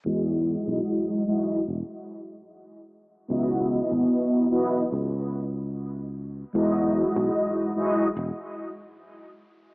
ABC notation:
X:1
M:4/4
L:1/16
Q:1/4=74
K:E
V:1 name="Analog polysynth"
[G,EFd]6 [G,EFd]2 z8 | [B,EFd]6 [B,EFd]2 z8 | [G,EFd]6 [G,EFd]2 z8 |]
V:2 name="Fretless electric bass" clef=bass
E,,2 z B,,, z4 E,,, z6 z | C,,2 z G,,, z4 C,,6- C,, z | E,,2 z B,,, z4 E,,, z6 z |]